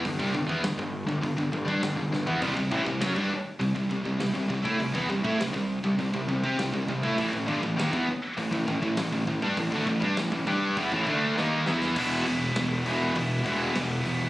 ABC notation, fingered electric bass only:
X:1
M:4/4
L:1/16
Q:1/4=101
K:Em
V:1 name="Fingered electric bass" clef=bass
G,,, C,, G,,, E,, G,,, G,,,2 G,,, G,,, G,,, G,,, G,, G,,, G,,, G,,, E,, | C,, C,, A,,, C,, F,, G,, z2 C,, C,, C,, C,, C,, C,, C,, A,, | C,, E,, C,, A,, C,, C,,2 C,, C,, C,, C,, C, C,, C,, C,, A,, | A,,, A,,, G,,, A,,, ^D,, E,, z2 A,,, A,,, A,,, A,,, A,,, A,,, A,,, G,, |
A,,, D,, A,,, G,, A,,, A,,, G,,2 E,, A,,, D,,2 ^D,,2 E,,2 | E,,,2 E,,,2 E,,,2 E,,,2 E,,,2 E,,,2 E,,,2 E,,,2 |]